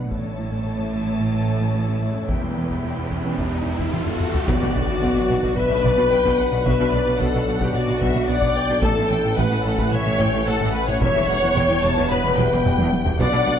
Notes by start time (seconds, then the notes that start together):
Already playing: D4
0.10 A1 A2 E3 A3 E4 A4 C#5 E5 A5, taiko, riser
0.24 A2 C#4
0.39 A3 E4
0.52 A2 A3
0.65 A2 A4
0.79 A2 A4
0.94 A2 A3
1.07 A3 E4
1.20 A2 A3 C#4
1.34 A2
1.48 A2
1.61 A2 A3
1.75 A3 E4
1.89 A2 C#4
2.02 A2 A3
2.15 A2 C#4
2.28 E1 E2 E3 G3 B3 G4 B4 G5, taiko
2.43 E2 G3
2.57 E3 B3
2.69 E2 E3, taiko
2.84 E2 E4
2.98 E2 E4
3.10 E2 E3, taiko
3.25 E3 B3
3.38 E2 E3, taiko
3.52 E2
3.66 E2
3.79 E2 E3, taiko
3.93 E3 B3 A4, taiko mid
4.06 E2 G3, taiko low-mid
4.20 E2 E3, taiko low-mid
4.34 E2 G3, taiko low
4.46 B1 B2 F#3 B3 D4 F#4 B4 D5, taiko, impact
4.61 B2 D4
4.75 B1 B2 D4
4.89 B2 B4
5.01 B1 B2 B3, taiko
5.16 B2 B4
5.29 B1 B2 B4
5.43 B2 B3, taiko
5.56 B2 B4 E5, taiko mid
5.70 B2 B3 F#4, taiko mid
5.84 B1 B2 B3 D5, taiko
5.97 B2 B3 F#4
6.11 B1 B2 B3 F#4 G5
6.24 B2 B3, taiko
6.38 B3 F#5
6.52 B2 D4, taiko mid
6.64 B1 B2 B3 B4 E5, taiko
6.79 B2 D4
6.92 B1 B2 D5
7.07 B2 B4
7.18 B1 B2 B3 A4 F#5, taiko
7.34 B2 B4
7.47 B1 B2 B4
7.60 B2 B3 G4, taiko
7.73 B2 F#4 D5, taiko mid
7.87 B2 B3 F#4, taiko mid
8.00 B1 B2 B3 E5, taiko
8.15 B2 B3 F#4
8.28 B1 B2 B3 F#4 D5 F#5
8.42 B2 B3, taiko
8.56 B3 G5
8.69 B2 D4, taiko mid
8.82 A1 A2 E3 A3 C#4 A4 E5 A5, taiko
8.97 A2 C#4
9.11 A1 A2 C#4 G5
9.24 A2 A4
9.37 A1 A2 A3 B4 F#5, taiko
9.51 A2 A4
9.65 A1 A2 A4
9.78 A2 A3 B4, taiko
9.92 A2 C#5 E5, taiko mid
10.06 A2 A3 E4, taiko mid
10.19 A1 A2 A3 G5, taiko
10.33 A2 A3 E4
10.46 A1 A2 A3 E4 A4 F#5
10.60 A2 A3, taiko
10.73 A3 B4
10.87 A2 C#4 C#5, taiko mid
11.01 E1 E2 E3 G3 B3 G4 C#5 E5, taiko
11.15 E2 G3
11.28 E1 E2 G3 F#5
11.42 E2 E4
11.56 E1 E2 E3 G5, taiko
11.70 E2 E4
11.83 E1 E2 E4 A5
11.97 E2 E3, taiko
12.10 E2 B4 B5, taiko mid
12.24 E2 E3 B3, taiko mid
12.37 E1 E2 E3 G5, taiko
12.51 E2 E3 B3
12.65 E1 E2 E3 B3, taiko low-mid
12.78 E2 E3, taiko high
12.92 E3, taiko high
13.06 E2 G3, taiko low
13.19 B1 B2 F#3 B3 D4 F#4 D5 F#5, taiko
13.33 B2 D4
13.47 B1 B2 D4